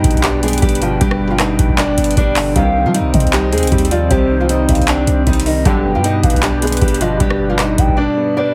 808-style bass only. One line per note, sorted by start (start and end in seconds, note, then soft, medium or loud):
0.04 0.14 G1 loud
0.14 0.60 B1 loud
0.62 0.99 G1 loud
1.01 1.57 G1 loud
1.59 1.69 G1 loud
1.69 1.97 G1 loud
1.98 2.16 G1 loud
2.17 2.54 G1 loud
2.56 2.87 C2 loud
2.85 3.01 G3 loud
2.99 3.13 C2 loud
3.14 3.23 C3 loud
3.24 3.54 C2 loud
3.52 3.64 D#2 loud
3.63 3.71 C2 loud
3.72 4.09 D#2 loud
4.11 4.66 C2 loud
4.69 4.79 C2 loud
4.79 5.06 C2 loud
5.07 5.26 C2 loud
5.27 5.64 C2 loud
5.65 5.96 G1 loud
5.95 6.22 G2 loud
6.24 6.33 G1 loud
6.34 6.80 B1 loud
6.81 7.19 G1 loud
7.20 7.76 G1 loud
7.78 7.88 G1 loud
7.89 7.97 G1 loud